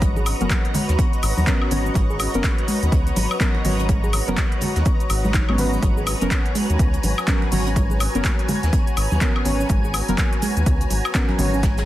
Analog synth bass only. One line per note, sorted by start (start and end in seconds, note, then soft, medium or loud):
0.00 0.34 G#1 loud
0.41 0.47 F#1 medium
0.89 0.96 D#2 medium
1.23 1.33 G#1 medium
1.37 1.44 D#2 medium
1.71 1.90 G#1 medium
1.95 2.27 G#1 loud
2.34 2.41 F#1 medium
2.83 2.89 D#2 medium
2.92 3.11 C#2 medium
3.16 3.27 G#1 medium
3.65 4.21 G#1 loud
4.28 4.35 F#1 medium
4.76 4.83 D#2 medium
5.10 5.42 G#1 loud
5.49 5.78 G#1 medium
5.83 6.14 G#1 loud
6.21 6.28 F#1 medium
6.70 6.77 D#2 medium
6.79 6.98 C#2 medium
7.03 7.14 G#1 medium
7.52 8.08 G#1 loud
8.15 8.22 F#1 medium
8.63 8.70 D#2 medium
8.97 9.07 G#1 medium
9.11 9.18 D#2 medium
9.45 9.64 G#1 medium
9.70 10.02 G#1 loud
10.08 10.15 F#1 medium
10.57 10.64 D#2 medium
10.66 10.85 C#2 medium
10.91 11.01 G#1 medium
11.39 11.85 G#1 loud